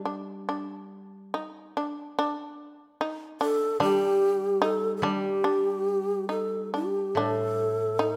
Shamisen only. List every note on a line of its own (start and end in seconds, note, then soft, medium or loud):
0.05 0.47 D4 soft
0.49 1.34 D4 medium
1.34 1.77 D#4 medium
1.77 2.17 D4 soft
2.19 3.00 D4 medium
3.01 3.40 D#4 medium
3.41 3.79 D4 medium
3.80 4.61 D4 medium
4.62 5.02 D#4 medium
5.03 5.43 D4 medium
5.44 6.29 D4 medium
6.29 6.73 D#4 medium
6.74 7.16 D4 soft
7.17 7.99 D4 medium
7.99 8.16 D#4 medium